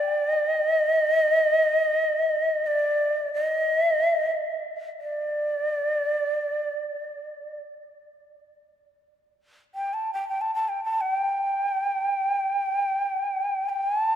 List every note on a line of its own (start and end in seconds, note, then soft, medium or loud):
0.00 0.41 D5 medium
0.41 2.68 D#5 medium
2.66 3.33 D5 medium
3.34 3.81 D#5 medium
3.81 3.93 E5 medium
3.93 4.07 D#5 medium
4.07 4.19 E5 medium
4.19 4.65 D#5 medium
5.01 7.59 D5 medium
9.75 9.95 G5 medium
9.94 10.11 A5 medium
10.13 10.27 G5 medium
10.29 10.43 G5 medium
10.41 10.54 A5 medium
10.55 10.70 A5 medium
10.69 10.84 G5 medium
10.84 11.02 A5 medium
11.01 11.12 F#5 medium
11.12 13.69 G5 medium
13.69 13.88 G5 medium
13.88 14.01 G#5 medium
14.01 14.16 A5 medium